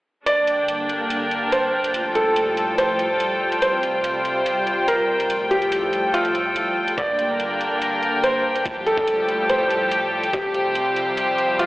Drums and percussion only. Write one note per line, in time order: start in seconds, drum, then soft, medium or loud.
0.26 closed hi-hat medium
0.47 closed hi-hat medium
0.68 closed hi-hat medium
0.89 closed hi-hat medium
1.10 closed hi-hat medium
1.31 closed hi-hat medium
1.52 closed hi-hat medium
1.84 closed hi-hat medium
1.94 closed hi-hat medium
2.15 closed hi-hat medium
2.36 closed hi-hat medium
2.57 closed hi-hat medium
2.78 closed hi-hat medium
2.99 closed hi-hat soft
3.20 closed hi-hat medium
3.52 closed hi-hat medium
3.62 closed hi-hat medium
3.83 closed hi-hat medium
4.04 closed hi-hat medium
4.25 closed hi-hat medium
4.46 closed hi-hat medium
4.67 closed hi-hat medium
4.88 closed hi-hat medium
5.20 closed hi-hat medium
5.30 closed hi-hat medium
5.51 closed hi-hat soft
5.62 closed hi-hat soft
5.72 closed hi-hat medium
5.93 closed hi-hat soft
6.14 closed hi-hat medium
6.25 closed hi-hat soft
6.35 closed hi-hat soft
6.56 closed hi-hat medium
6.88 closed hi-hat medium
6.98 kick loud
6.98 closed hi-hat medium
7.19 closed hi-hat soft
7.40 closed hi-hat medium
7.61 closed hi-hat soft
7.82 closed hi-hat medium
8.03 closed hi-hat soft
8.24 closed hi-hat medium
8.56 closed hi-hat medium
8.66 kick loud
8.66 closed hi-hat medium
8.87 closed hi-hat soft
8.98 kick medium
9.08 closed hi-hat medium
9.29 closed hi-hat soft
9.49 closed hi-hat medium
9.71 closed hi-hat soft
9.91 closed hi-hat medium
10.23 closed hi-hat medium
10.33 kick loud
10.33 closed hi-hat medium
10.54 closed hi-hat soft
10.75 closed hi-hat medium
10.96 closed hi-hat medium
11.17 closed hi-hat medium
11.38 closed hi-hat soft
11.59 closed hi-hat medium